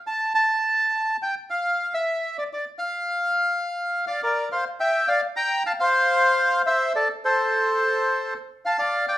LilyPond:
\new Staff \with { instrumentName = "Bandoneon" } { \time 4/4 \key f \major \tempo 4 = 105 a''8 a''4. g''8 f''8. e''8. | d''16 d''8 f''2~ f''16 <d'' f''>16 <bes' d''>8 <c'' f''>16~ | <c'' f''>16 <e'' g''>8 <d'' f''>8 <g'' bes''>8 <f'' a''>16 <c'' f''>4. <c'' e''>8 | <a' d''>8 <a' c''>2 r8 <f'' a''>16 <d'' f''>8 <d'' g''>16 | }